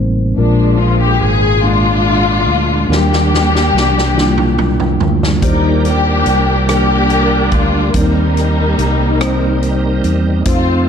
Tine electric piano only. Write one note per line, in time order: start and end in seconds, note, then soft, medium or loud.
0.00 0.40 G3 medium
0.00 0.37 A#3 medium
0.00 0.40 C4 medium
0.00 0.40 D#4 medium
0.00 0.40 C5 medium
0.36 1.60 A#2 medium
0.36 1.16 G#3 medium
0.36 1.17 A#3 medium
0.36 1.17 D4 medium
0.36 1.17 F4 medium
0.36 1.17 A#4 medium
1.62 2.42 G#3 medium
1.62 2.43 A#3 medium
1.62 2.43 D4 soft
1.62 2.43 F4 medium
1.62 2.43 G#4 medium
2.88 4.12 D#3 soft
2.88 2.96 F#3 soft
2.88 3.69 A#3 medium
2.88 3.69 D4 medium
2.88 3.69 G4 medium
2.88 3.70 A#4 medium
2.94 3.71 G3 medium
4.15 4.96 D#3 medium
4.15 4.95 G3 medium
4.15 4.95 A#3 medium
4.15 4.95 D4 medium
4.15 4.23 E4 medium
4.24 4.99 F4 medium
5.41 6.64 D#3 soft
5.41 6.21 G3 medium
5.41 6.21 A#3 medium
5.41 6.22 G4 medium
5.41 6.22 C5 medium
5.41 6.22 D5 medium
6.67 7.47 D#3 soft
6.67 7.47 G3 medium
6.67 7.47 A#3 soft
6.67 7.47 D4 soft
6.67 7.48 A#4 medium
7.93 9.16 D#3 medium
7.93 8.73 G3 medium
7.93 8.73 A#3 medium
7.93 8.73 C4 medium
7.93 8.01 D4 soft
7.93 8.74 A#4 medium
8.02 8.77 D#4 medium
9.19 9.98 G3 medium
9.19 9.99 A#3 medium
9.19 9.99 C4 medium
9.19 9.99 D#4 medium
9.19 10.00 C5 medium
10.44 10.89 A3 medium
10.44 10.89 C4 medium
10.44 10.89 D#4 medium
10.44 10.89 F4 medium
10.44 10.89 C5 medium